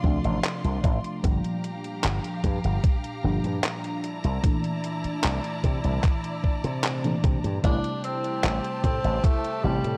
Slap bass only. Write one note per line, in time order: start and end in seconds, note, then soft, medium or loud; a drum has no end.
0.04 0.18 D2 medium
0.24 0.38 A1 medium
0.64 0.78 C2 medium
0.84 0.98 A1 medium
1.24 1.38 G1 loud
2.04 2.18 G1 medium
2.44 2.58 G2 medium
2.64 2.78 G1 medium
3.24 3.38 G1 medium
3.44 3.58 G2 medium
4.24 4.38 C2 medium
5.04 muted slap bass stroke soft
5.24 5.38 C2 medium
5.64 5.78 C3 medium
5.84 5.98 C2 medium
6.64 7.14 C3 medium
7.24 7.38 C3 medium
7.44 7.58 G2 medium
7.64 7.78 A1 medium
8.44 8.58 A1 medium
8.84 8.98 A2 loud
9.04 9.18 A1 medium
9.64 9.78 A1 medium
9.84 9.97 A2 medium